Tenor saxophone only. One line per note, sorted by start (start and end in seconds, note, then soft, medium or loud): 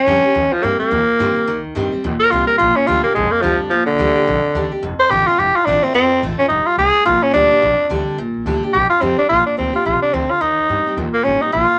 0.00 0.54 C#4 loud
0.53 0.65 F3 medium
0.63 0.79 A#3 medium
0.79 1.61 A#3 medium
2.20 2.33 A#4 loud
2.31 2.47 F4 medium
2.47 2.57 A#4 medium
2.58 2.77 F4 loud
2.76 2.88 C#4 medium
2.87 3.03 F4 loud
3.03 3.14 A#3 medium
3.14 3.33 G#3 medium
3.31 3.43 A#3 medium
3.42 3.59 F3 loud
3.70 3.86 F3 medium
3.86 4.68 D3 loud
4.99 5.12 C5 loud
5.10 5.28 G4 loud
5.27 5.41 F4 medium
5.39 5.57 G4 medium
5.56 5.67 F4 medium
5.65 5.85 D4 medium
5.83 5.94 C4 medium
5.95 6.22 C4 loud
6.39 6.47 C#4 medium
6.48 6.68 D#4 medium
6.66 6.78 F4 medium
6.78 7.05 G#4 loud
7.06 7.24 F4 medium
7.23 7.33 C#4 medium
7.34 7.88 D4 loud
8.73 8.89 G4 loud
8.90 9.03 F4 medium
9.02 9.18 C4 medium
9.19 9.28 D4 medium
9.29 9.46 F4 loud
9.46 9.57 D4 medium
9.58 9.74 C4 medium
9.76 9.86 F4 medium
9.86 10.01 F4 medium
10.02 10.15 D4 medium
10.14 10.32 C4 medium
10.30 10.43 F4 medium
10.41 10.96 D#4 medium
11.14 11.26 A#3 medium
11.24 11.43 C#4 medium
11.41 11.53 D#4 medium
11.53 11.79 F4 loud